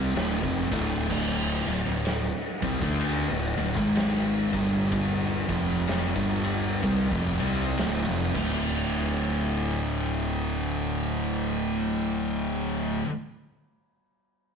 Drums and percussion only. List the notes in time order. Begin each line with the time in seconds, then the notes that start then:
0.15 snare, ride
0.43 kick
0.72 kick, ride
1.10 kick, crash
1.66 ride
1.88 snare
2.05 snare, ride
2.36 snare
2.62 kick, ride
2.82 kick
3.00 ride
3.58 ride
3.77 kick
3.95 snare, ride
4.53 kick, ride
4.92 kick, ride
5.49 kick, ride
5.70 snare
5.87 snare, ride
6.16 kick, snare
6.44 ride
6.83 kick, ride
7.12 kick
7.40 ride
7.78 snare, ride
8.35 kick, crash